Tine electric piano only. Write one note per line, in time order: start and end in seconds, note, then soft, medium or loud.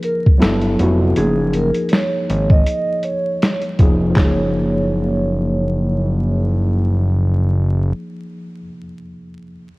0.00 0.43 F3 medium
0.00 0.43 A#3 medium
0.00 0.43 D#4 medium
0.00 0.43 G#4 medium
0.38 0.72 F#3 medium
0.38 0.72 B3 medium
0.38 0.73 E4 medium
0.38 0.73 A4 loud
0.79 1.11 F#3 medium
0.79 1.12 B3 medium
0.79 1.12 E4 medium
0.79 1.13 F#4 medium
1.16 2.43 F3 medium
1.16 1.24 A3 medium
1.16 2.44 D#4 medium
1.16 2.45 G#4 medium
1.24 2.47 A#3 medium
3.79 4.09 F3 medium
3.79 4.11 A#3 medium
3.79 4.12 D#4 medium
3.79 4.13 G#4 medium
4.10 8.59 F3 medium
4.15 8.62 A#3 medium
4.19 8.64 D#4 medium
4.24 8.66 G#4 medium